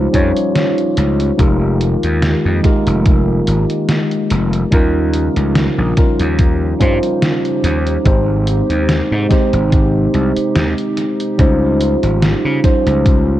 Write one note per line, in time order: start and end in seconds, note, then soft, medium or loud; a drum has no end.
0.00 1.36 F3 medium
0.00 0.12 G3 medium
0.00 0.13 C#4 medium
0.00 0.14 D#4 medium
0.00 1.36 D#4 medium
0.00 0.15 F4 medium
0.00 1.36 G4 medium
0.00 1.41 C5 medium
0.12 0.31 F2 loud
0.12 1.34 G3 medium
0.12 1.34 C#4 medium
0.12 1.34 D#4 medium
0.12 1.35 F4 medium
0.12 1.35 C#5 medium
0.12 kick medium
0.12 closed hi-hat medium
0.37 closed hi-hat soft
0.56 snare loud
0.56 closed hi-hat medium
0.78 closed hi-hat soft
0.97 1.30 C#2 medium
0.97 closed hi-hat medium
1.20 closed hi-hat medium
1.37 1.94 F1 medium
1.37 4.69 D#3 medium
1.37 2.59 G#3 medium
1.37 4.69 G#3 medium
1.37 4.69 A#3 medium
1.37 2.59 D#4 medium
1.37 2.59 F4 medium
1.37 13.40 G4 medium
1.37 2.60 G4 medium
1.37 2.60 A#4 medium
1.37 kick loud
1.37 closed hi-hat medium
1.81 closed hi-hat medium
2.03 2.34 D#2 medium
2.03 closed hi-hat medium
2.22 snare loud
2.22 closed hi-hat medium
2.45 2.60 F2 medium
2.63 4.67 G#3 medium
2.63 4.67 D#4 medium
2.63 4.68 F4 medium
2.63 4.68 G4 medium
2.63 4.69 A#4 medium
2.63 kick loud
2.63 closed hi-hat medium
2.87 3.40 F1 medium
2.87 closed hi-hat medium
3.06 kick loud
3.06 closed hi-hat medium
3.47 3.64 G#1 medium
3.47 closed hi-hat medium
3.70 closed hi-hat medium
3.89 snare loud
3.89 closed hi-hat medium
4.11 closed hi-hat soft
4.30 4.63 F1 medium
4.30 closed hi-hat medium
4.53 closed hi-hat medium
4.71 5.28 D#2 loud
4.71 8.02 C#3 medium
4.71 8.02 F3 medium
4.71 5.92 G3 medium
4.71 5.92 C#4 medium
4.71 5.93 D#4 medium
4.71 13.40 D#4 medium
4.71 5.93 F4 medium
4.71 5.93 A#4 medium
4.71 kick loud
4.71 closed hi-hat medium
5.13 closed hi-hat medium
5.36 5.67 C#2 medium
5.36 closed hi-hat medium
5.55 snare loud
5.55 closed hi-hat medium
5.78 5.93 A#1 medium
5.97 6.76 G3 medium
5.97 6.76 C#4 medium
5.97 6.76 D#4 medium
5.97 6.76 F4 medium
5.97 6.76 A#4 medium
5.97 kick loud
5.97 closed hi-hat medium
6.20 6.73 D#2 medium
6.20 closed hi-hat medium
6.39 kick loud
6.39 closed hi-hat medium
6.79 6.98 G2 medium
6.79 8.00 G3 medium
6.79 8.01 C#4 medium
6.79 8.01 D#4 medium
6.79 8.01 F4 medium
6.79 8.02 C5 medium
6.79 kick medium
6.79 closed hi-hat medium
7.03 closed hi-hat soft
7.22 snare loud
7.22 closed hi-hat medium
7.45 closed hi-hat soft
7.64 7.96 D#2 medium
7.64 closed hi-hat medium
7.87 closed hi-hat medium
8.04 8.61 G#1 loud
8.04 11.36 C3 medium
8.04 9.25 G#3 medium
8.04 11.36 G#3 medium
8.04 9.26 C4 medium
8.04 9.26 D#4 medium
8.04 9.26 G4 medium
8.04 9.27 C5 medium
8.04 kick loud
8.04 closed hi-hat medium
8.47 closed hi-hat medium
8.70 9.00 D#2 medium
8.70 closed hi-hat medium
8.89 snare loud
8.89 closed hi-hat medium
9.12 9.26 G#2 medium
9.29 11.34 G#3 medium
9.29 11.34 C4 medium
9.29 11.34 D#4 medium
9.29 11.35 G4 medium
9.29 11.35 C5 medium
9.29 kick loud
9.29 snare medium
9.29 closed hi-hat medium
9.53 10.06 G#1 medium
9.53 closed hi-hat soft
9.72 kick loud
9.72 closed hi-hat medium
10.14 10.31 C2 medium
10.14 closed hi-hat medium
10.36 closed hi-hat soft
10.56 10.73 D#2 medium
10.56 snare loud
10.56 closed hi-hat medium
10.78 closed hi-hat soft
10.97 closed hi-hat medium
11.20 closed hi-hat soft
11.37 11.94 C#2 loud
11.37 13.40 F3 medium
11.37 12.59 G3 medium
11.37 12.59 C#4 medium
11.37 12.59 D#4 medium
11.37 12.60 F4 medium
11.37 12.60 C5 medium
11.37 kick loud
11.37 closed hi-hat medium
11.81 closed hi-hat medium
12.03 12.34 G#1 medium
12.03 closed hi-hat soft
12.22 snare loud
12.22 closed hi-hat medium
12.45 12.59 C#3 medium
12.63 13.40 G3 medium
12.63 13.40 C#4 medium
12.63 13.40 D#4 medium
12.63 13.40 F4 medium
12.63 13.40 C5 medium
12.63 kick loud
12.63 closed hi-hat medium
12.87 13.40 C#2 medium
12.87 closed hi-hat soft
13.06 kick loud
13.06 closed hi-hat medium